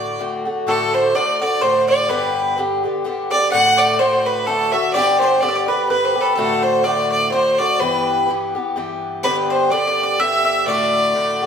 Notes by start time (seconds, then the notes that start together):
Already playing: A2 D3 A3 F#4 D5
0.19 A2 D3 A3 F#4
0.45 D3 A3 F#4
0.67 A2 D3 A3 F#4 A4
0.94 C5
1.14 A2 D3 A3 F#4 D5
1.41 D3 A3 F#4 D5
1.61 A2 D3 A3 F#4 C5
1.88 D5
2.09 G2 D3 B3 G4 B4
2.58 G2 D3 B3 G4
2.83 D3 B3 G4
3.04 G2 D3 B3 G4
3.31 D3 B3 G4 D5
3.52 A2 D3 A3 F#4 F#5
3.77 D5
3.99 A2 D3 A3 F#4 C5
4.26 B4
4.47 A2 D3 A3 F#4 A4
4.72 D3 A3 F#4 E5
4.94 G2 D3 B3 G4 D5
5.20 C5
5.41 G2 D3 B3 G4 D5
5.48 D5
5.55 D5
5.68 D3 B3 G4 B4
5.89 G2 D3 B3 G4 B4
6.03 B4 C5
6.15 D3 B3 G4
6.21 A4 B4
6.35 A2 D3 A3 F#4 A4
6.62 C5
6.84 A2 D3 A3 F#4 D5
7.11 D5
7.32 A2 D3 A3 F#4 C5
7.58 D3 A3 F#4 D5
7.80 G2 E3 B3 G4 B4
8.29 G2 E3 B3 G4
8.55 E3 B3 G4
8.76 G2 E3 B3 G4
9.23 G2 D3 B3 G4 B4
9.50 C5
9.71 G2 D3 B3 G4 D5
9.87 D5
10.03 D5
10.19 G2 D3 B3 G4 E5
10.45 E5
10.66 A2 D3 A3 F#4 D5
11.15 A2 D3 A3 F#4
11.42 A3 F#4